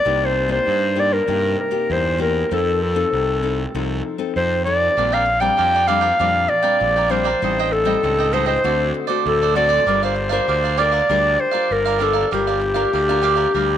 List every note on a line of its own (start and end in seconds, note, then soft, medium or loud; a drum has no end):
0.00 0.27 D5 loud
0.05 0.58 C2 loud
0.05 0.64 C3 medium
0.05 0.47 A#3 medium
0.05 0.47 D#4 medium
0.05 0.47 G4 medium
0.25 0.51 C5 medium
0.48 0.91 A#3 medium
0.48 0.92 D#4 medium
0.48 0.92 G4 medium
0.48 1.01 C5 loud
0.66 1.25 G2 medium
0.66 1.19 G2 medium
0.96 1.15 A#3 medium
0.96 1.15 D#4 medium
0.96 1.15 G4 medium
0.96 1.15 D5 medium
1.13 1.59 A#4 medium
1.27 1.55 G2 medium
1.27 1.87 C3 medium
1.27 1.69 A#3 medium
1.27 1.70 D#4 medium
1.27 1.70 G4 medium
1.60 1.94 A#4 medium
1.71 2.14 A#3 medium
1.71 2.14 D#4 medium
1.71 2.14 G4 medium
1.90 2.42 E2 medium
1.90 2.49 G2 medium
1.90 2.21 C5 loud
2.18 2.45 A#3 medium
2.18 2.46 D#4 medium
2.18 2.46 G4 medium
2.18 2.55 A#4 medium
2.51 3.04 F2 loud
2.51 3.10 F3 medium
2.51 2.80 C4 medium
2.51 2.80 D#4 medium
2.51 2.81 A4 medium
2.51 2.82 A4 medium
2.82 3.70 A4 medium
2.95 3.37 C4 medium
2.95 3.38 D#4 medium
2.95 3.38 A4 medium
3.12 3.65 C2 medium
3.12 3.72 C3 medium
3.42 3.61 C4 soft
3.42 3.61 D#4 medium
3.42 3.61 A4 medium
3.74 4.00 C2 medium
3.74 4.33 F3 medium
3.74 4.16 C4 medium
3.74 4.16 D#4 medium
3.74 4.16 A4 medium
4.18 4.60 C4 medium
4.18 4.61 D#4 medium
4.18 4.61 A4 medium
4.36 4.88 F2 loud
4.36 4.95 C3 medium
4.36 4.64 C5 loud
4.65 4.92 C4 medium
4.65 4.92 D#4 medium
4.65 4.92 A4 medium
4.65 5.15 D5 medium
4.97 5.49 A#1 loud
4.97 5.56 A#2 medium
4.97 5.26 G3 medium
4.97 5.27 C4 medium
4.97 5.11 D4 soft
4.97 5.27 D4 medium
4.97 5.11 A#4 soft
4.97 5.12 D5 soft
4.97 5.11 G5 medium
5.12 5.25 A#4 medium
5.12 5.25 D5 medium
5.12 5.42 F5 loud
5.12 5.25 G5 medium
5.25 muted cavaquinho stroke soft
5.40 5.83 G3 medium
5.40 5.84 C4 medium
5.40 5.84 D4 medium
5.40 5.57 A#4 medium
5.40 5.56 D5 medium
5.40 5.56 G5 medium
5.40 5.89 G5 loud
5.57 6.11 F2 medium
5.57 6.17 F3 medium
5.57 5.72 D4 medium
5.57 5.72 A#4 soft
5.57 5.72 D5 medium
5.57 5.73 G5 medium
5.74 5.87 A#4 soft
5.74 5.87 D5 medium
5.74 5.88 G5 medium
5.87 6.07 G3 medium
5.87 6.07 C4 medium
5.87 6.02 D4 medium
5.87 6.07 D4 medium
5.87 6.01 A#4 medium
5.87 6.01 D5 medium
5.87 6.50 F5 loud
5.87 6.00 G5 medium
6.01 6.18 A#4 medium
6.01 6.17 D5 medium
6.01 6.17 G5 medium
6.19 6.46 F2 medium
6.19 6.78 A#2 medium
6.19 6.48 G3 medium
6.19 6.49 C4 medium
6.19 6.47 D4 soft
6.19 6.49 D4 medium
6.19 6.47 A#4 medium
6.19 6.47 D5 medium
6.19 6.48 G5 medium
6.48 7.12 D5 loud
6.48 muted cavaquinho stroke soft
6.62 7.05 G3 medium
6.62 7.06 C4 medium
6.62 7.06 D4 medium
6.62 6.94 A#4 medium
6.62 6.94 D5 medium
6.62 6.94 G5 medium
6.80 7.33 A#1 loud
6.80 7.39 F3 medium
6.96 7.10 A#4 medium
6.96 7.10 D5 medium
6.96 7.11 G5 medium
7.09 7.29 G3 medium
7.09 7.29 C4 medium
7.09 7.29 D4 medium
7.09 7.25 D4 medium
7.09 7.25 A#4 medium
7.09 7.74 C5 loud
7.09 7.24 D5 medium
7.09 7.23 G5 medium
7.24 7.41 A#4 medium
7.24 7.40 D5 medium
7.24 7.40 G5 medium
7.42 7.94 A1 loud
7.42 8.00 A2 medium
7.42 7.83 G3 medium
7.42 7.83 C4 medium
7.42 7.83 D#4 medium
7.42 7.57 A4 soft
7.42 7.57 C5 soft
7.42 7.57 D#5 soft
7.42 7.58 G5 soft
7.59 7.72 C5 medium
7.59 7.72 D#5 medium
7.59 7.72 G5 medium
7.72 8.35 A4 medium
7.72 muted cavaquinho stroke soft
7.85 8.28 G3 medium
7.85 8.28 C4 medium
7.85 8.28 D#4 medium
7.85 8.02 C5 medium
7.85 8.02 D#5 medium
7.85 8.01 G5 medium
8.03 8.55 C#2 medium
8.03 8.62 A2 medium
8.03 8.17 A4 medium
8.03 8.18 C5 soft
8.03 8.18 D#5 medium
8.03 8.17 G5 medium
8.18 8.32 C5 medium
8.18 8.33 D#5 medium
8.18 8.33 G5 medium
8.32 8.59 G3 soft
8.32 8.59 C4 medium
8.32 8.59 D#4 medium
8.32 8.48 A4 medium
8.32 8.47 C5 medium
8.32 8.45 D#5 medium
8.32 8.45 G5 medium
8.46 8.95 C5 loud
8.46 8.63 C5 medium
8.46 8.62 D#5 medium
8.46 8.62 G5 medium
8.64 8.91 D2 medium
8.64 9.23 D3 medium
8.64 9.06 A3 medium
8.64 9.06 C4 medium
8.64 8.93 F#4 soft
8.64 9.06 F#4 medium
8.64 8.93 A4 medium
8.64 8.94 C5 medium
8.64 8.93 D5 medium
8.94 muted cavaquinho stroke soft
9.07 9.51 A3 medium
9.07 9.51 C4 medium
9.07 9.51 F#4 medium
9.07 9.39 A4 medium
9.07 9.39 C5 medium
9.07 9.38 D5 medium
9.26 9.78 D2 loud
9.26 9.84 A2 medium
9.26 9.55 A4 medium
9.42 9.55 A4 medium
9.42 9.56 C5 medium
9.42 9.56 D5 medium
9.55 9.82 A3 medium
9.55 9.82 C4 medium
9.55 9.70 F#4 soft
9.55 9.82 F#4 medium
9.55 9.69 A4 medium
9.55 9.69 C5 medium
9.55 9.99 D5 loud
9.55 9.68 D5 medium
9.69 9.85 A4 medium
9.69 9.85 C5 medium
9.69 9.85 D5 medium
9.86 10.39 G1 loud
9.86 10.46 G3 medium
9.86 10.17 D4 medium
9.86 10.17 F4 medium
9.86 10.01 G4 medium
9.86 10.01 A#4 medium
9.86 10.17 A#4 medium
9.86 10.01 D5 medium
9.86 10.02 F5 soft
10.03 10.15 A#4 medium
10.03 10.32 C5 medium
10.03 10.14 D5 medium
10.03 10.15 F5 medium
10.15 muted cavaquinho stroke soft
10.29 10.74 D4 medium
10.29 10.74 F4 medium
10.29 10.46 A#4 medium
10.29 10.74 A#4 medium
10.29 10.80 C5 medium
10.29 10.46 D5 medium
10.29 10.45 F5 medium
10.48 11.00 D2 medium
10.48 11.07 D3 medium
10.48 10.62 G4 soft
10.48 10.63 A#4 medium
10.48 10.63 D5 soft
10.48 10.62 F5 medium
10.64 10.77 A#4 medium
10.64 10.77 D5 medium
10.64 10.77 F5 medium
10.77 10.97 D4 medium
10.77 10.97 F4 medium
10.77 10.92 G4 medium
10.77 10.92 A#4 medium
10.77 10.98 A#4 medium
10.77 10.91 D5 medium
10.77 11.42 D5 loud
10.77 10.91 F5 medium
10.92 11.08 A#4 medium
10.92 11.08 D5 medium
10.92 11.07 F5 medium
11.09 11.36 D2 medium
11.09 11.68 G3 medium
11.09 11.51 D4 medium
11.09 11.51 F4 medium
11.09 11.37 G4 soft
11.09 11.37 A#4 medium
11.09 11.51 A#4 medium
11.09 11.38 D5 medium
11.09 11.38 F5 medium
11.38 11.74 C5 medium
11.38 muted cavaquinho stroke soft
11.51 11.96 D4 medium
11.51 11.96 F4 medium
11.51 11.84 A#4 medium
11.51 11.96 A#4 medium
11.51 11.84 D5 medium
11.51 11.83 F5 medium
11.71 12.23 G1 medium
11.71 12.30 D3 medium
11.71 12.04 A#4 medium
11.85 11.98 A#4 medium
11.85 11.99 D5 medium
11.85 11.99 F5 medium
11.99 12.19 D4 medium
11.99 12.20 F4 medium
11.99 12.14 G4 soft
11.99 12.33 A4 medium
11.99 12.14 A#4 medium
11.99 12.20 A#4 medium
11.99 12.13 D5 medium
11.99 12.12 F5 medium
12.13 12.30 A#4 medium
12.13 12.30 D5 medium
12.13 12.29 F5 medium
12.31 12.84 G1 loud
12.31 12.91 G3 medium
12.31 12.74 D4 medium
12.31 12.74 F4 medium
12.31 12.46 G4 soft
12.31 13.78 G4 medium
12.31 12.46 A#4 medium
12.31 12.74 A#4 medium
12.31 12.46 D5 soft
12.31 12.46 F5 medium
12.47 12.60 A#4 medium
12.47 12.60 D5 medium
12.47 12.61 F5 medium
12.61 muted cavaquinho stroke soft
12.74 13.02 D4 medium
12.74 13.02 F4 medium
12.74 13.03 A#4 medium
12.74 12.91 A#4 medium
12.74 12.91 D5 medium
12.74 12.90 F5 medium
12.93 13.45 D2 medium
12.93 13.51 D3 medium
12.93 13.07 G4 soft
12.93 13.08 A#4 soft
12.93 13.08 D5 medium
12.93 13.08 F5 medium
13.09 13.19 D4 medium
13.09 13.20 F4 medium
13.09 13.20 A#4 medium
13.09 13.21 A#4 soft
13.09 13.22 D5 medium
13.09 13.22 F5 medium
13.22 13.78 D4 soft
13.22 13.78 F4 medium
13.22 13.37 G4 medium
13.22 13.36 A#4 medium
13.22 13.78 A#4 medium
13.22 13.35 D5 medium
13.22 13.34 F5 medium
13.36 13.52 A#4 medium
13.36 13.52 D5 medium
13.36 13.52 F5 medium
13.54 13.78 D2 medium
13.54 13.78 G3 medium
13.54 13.78 G4 soft
13.54 13.78 A#4 medium
13.54 13.78 D5 medium
13.54 13.78 F5 medium